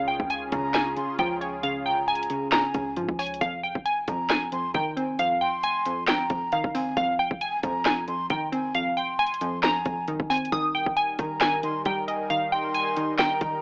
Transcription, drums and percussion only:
0.20 kick medium
0.30 closed hi-hat medium
0.52 kick loud
0.52 closed hi-hat medium
0.74 snare loud
0.74 clap loud
0.74 closed hi-hat medium
0.96 closed hi-hat medium
1.19 kick medium
1.19 closed hi-hat medium
1.41 closed hi-hat medium
1.63 closed hi-hat loud
2.08 closed hi-hat medium
2.15 closed hi-hat medium
2.23 closed hi-hat medium
2.30 closed hi-hat medium
2.52 snare loud
2.52 clap loud
2.52 closed hi-hat medium
2.74 kick loud
2.74 closed hi-hat medium
2.96 closed hi-hat medium
3.09 kick medium
3.19 closed hi-hat soft
3.19 open hi-hat medium
3.26 closed hi-hat medium
3.34 closed hi-hat medium
3.41 kick loud
3.41 closed hi-hat loud
3.75 kick medium
3.86 closed hi-hat medium
4.08 kick loud
4.08 closed hi-hat medium
4.30 snare loud
4.30 clap loud
4.30 closed hi-hat medium
4.52 closed hi-hat medium
4.74 kick loud
4.74 closed hi-hat medium
4.97 closed hi-hat medium
5.19 closed hi-hat medium
5.63 closed hi-hat medium
5.85 closed hi-hat medium
6.08 snare loud
6.08 clap loud
6.08 closed hi-hat medium
6.30 kick loud
6.30 closed hi-hat medium
6.52 closed hi-hat medium
6.64 kick loud
6.75 open hi-hat medium
6.97 kick loud
6.97 closed hi-hat loud
7.31 kick medium
7.41 closed hi-hat medium
7.63 kick loud
7.63 closed hi-hat medium
7.85 snare loud
7.85 clap loud
7.85 closed hi-hat medium
8.08 closed hi-hat medium
8.30 kick loud
8.30 closed hi-hat medium
8.53 closed hi-hat medium
8.75 closed hi-hat loud
9.19 closed hi-hat medium
9.26 closed hi-hat medium
9.34 closed hi-hat medium
9.41 closed hi-hat medium
9.63 snare loud
9.63 clap loud
9.63 closed hi-hat medium
9.85 kick loud
9.85 closed hi-hat medium
10.08 closed hi-hat medium
10.20 kick loud
10.30 closed hi-hat soft
10.30 open hi-hat medium
10.38 closed hi-hat medium
10.45 closed hi-hat medium
10.52 kick loud
10.52 closed hi-hat medium
10.86 kick medium
10.97 closed hi-hat medium
11.19 kick loud
11.19 closed hi-hat medium
11.41 snare loud
11.41 clap loud
11.41 closed hi-hat medium
11.63 closed hi-hat medium
11.85 kick medium
11.85 closed hi-hat medium
12.08 closed hi-hat medium
12.30 closed hi-hat loud
12.74 closed hi-hat medium
12.96 closed hi-hat medium
13.19 snare loud
13.19 clap loud
13.19 closed hi-hat medium
13.41 kick loud
13.41 closed hi-hat medium

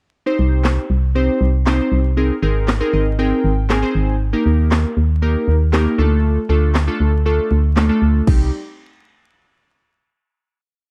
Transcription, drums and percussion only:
0.65 snare medium
0.65 clap loud
1.66 snare medium
1.66 clap loud
2.68 snare medium
2.68 clap loud
3.70 snare medium
3.70 clap loud
4.71 snare medium
4.71 clap loud
5.73 snare medium
5.73 clap loud
6.75 snare medium
6.75 clap loud
7.77 snare medium
7.77 clap loud
8.27 kick loud
8.27 crash medium

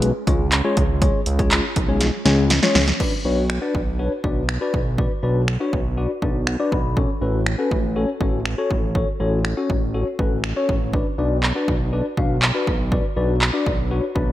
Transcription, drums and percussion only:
0.02 closed hi-hat loud
0.27 kick loud
0.27 closed hi-hat medium
0.52 clap loud
0.52 closed hi-hat loud
0.77 kick loud
0.77 closed hi-hat medium
1.02 kick loud
1.02 closed hi-hat loud
1.26 closed hi-hat medium
1.39 kick loud
1.39 closed hi-hat soft
1.51 clap loud
1.51 closed hi-hat loud
1.76 kick medium
1.76 closed hi-hat medium
2.01 snare medium
2.01 closed hi-hat loud
2.26 snare medium
2.26 closed hi-hat medium
2.50 snare loud
2.50 closed hi-hat loud
2.63 snare medium
2.75 snare loud
2.75 open hi-hat medium
2.88 snare loud
2.88 closed hi-hat medium
3.00 kick loud
3.00 crash medium
3.50 finger snap loud
3.75 kick medium
4.24 kick medium
4.49 finger snap loud
4.74 kick medium
4.98 kick loud
5.48 finger snap loud
5.73 kick medium
6.22 kick medium
6.47 finger snap loud
6.72 kick medium
6.97 kick loud
7.46 finger snap loud
7.71 kick medium
8.21 kick medium
8.46 finger snap loud
8.71 kick medium
8.95 kick loud
9.45 finger snap loud
9.70 kick medium
10.19 kick medium
10.44 finger snap loud
10.69 kick loud
10.94 kick loud
11.43 clap loud
11.68 kick medium
12.17 kick loud
12.42 clap loud
12.67 kick loud
12.92 kick loud
13.41 clap loud
13.66 kick medium
14.16 kick medium

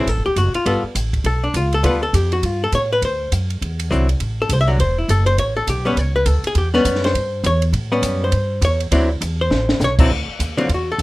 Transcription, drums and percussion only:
0.07 kick soft
0.07 ride medium
0.36 kick soft
0.36 hi-hat pedal medium
0.36 ride medium
0.54 ride soft
0.66 kick soft
0.66 ride medium
0.95 kick soft
0.95 hi-hat pedal medium
0.95 ride medium
1.13 kick soft
1.13 ride soft
1.24 kick soft
1.24 ride medium
1.54 kick soft
1.54 hi-hat pedal medium
1.54 ride medium
1.73 ride soft
1.84 kick soft
1.84 ride medium
2.14 kick soft
2.14 hi-hat pedal medium
2.14 ride medium
2.32 ride soft
2.43 kick soft
2.43 ride medium
2.72 kick soft
2.72 hi-hat pedal medium
2.72 ride medium
3.02 kick soft
3.02 ride medium
3.32 kick soft
3.32 hi-hat pedal medium
3.32 ride medium
3.50 ride soft
3.62 kick soft
3.62 ride medium
3.80 ride medium
3.91 kick soft
3.91 hi-hat pedal medium
4.09 ride medium
4.20 kick soft
4.20 ride medium
4.49 kick soft
4.49 hi-hat pedal medium
4.49 ride medium
4.79 kick soft
4.79 ride medium
5.09 kick soft
5.09 hi-hat pedal medium
5.09 ride medium
5.27 ride medium
5.38 kick soft
5.38 ride medium
5.67 kick soft
5.67 hi-hat pedal medium
5.67 ride medium
5.97 kick soft
5.97 ride medium
6.26 kick soft
6.26 hi-hat pedal medium
6.26 ride medium
6.44 ride medium
6.55 kick soft
6.55 ride medium
6.74 snare soft
6.85 kick soft
6.85 hi-hat pedal medium
6.85 ride medium
6.96 snare soft
7.04 snare soft
7.04 ride soft
7.15 kick soft
7.15 ride medium
7.44 kick soft
7.44 hi-hat pedal medium
7.44 ride medium
7.62 ride medium
7.73 kick soft
7.73 ride medium
8.03 kick soft
8.03 hi-hat pedal medium
8.03 ride medium
8.32 kick soft
8.32 ride medium
8.62 kick soft
8.62 hi-hat pedal medium
8.62 ride medium
8.80 ride medium
8.92 kick soft
8.92 ride medium
9.21 kick soft
9.21 hi-hat pedal medium
9.21 ride medium
9.51 snare medium
9.69 snare medium
9.80 snare medium
9.80 hi-hat pedal medium
9.99 kick medium
9.99 crash medium
10.10 kick soft
10.40 kick soft
10.40 hi-hat pedal medium
10.40 ride medium
10.58 ride soft
10.69 kick soft
10.69 ride medium
10.99 kick soft
10.99 hi-hat pedal medium
10.99 ride medium

